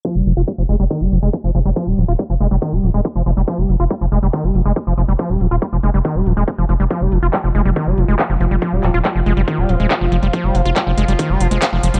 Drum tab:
HH |x-xxx-xxx-xxx-xx|x-xxx-xxx-xxx-xx|x-xxx-xxx-xxx-xx|xxxxx-xxx-xxxxxx|
CP |----------------|----------------|----------------|----------------|
BD |o---o---o---o---|o---o---o---o---|o---o---o---o---|o---o---o---o---|

HH |x-xxx-xxx-xxx-xx|x-xxx-xxx-xxx-xx|x-xxx-xxx-xxx-xx|
CP |----x-------x---|--x-x-------x---|----x-------x---|
BD |o---o---o---o---|o---o---o---o---|o---o---o---o---|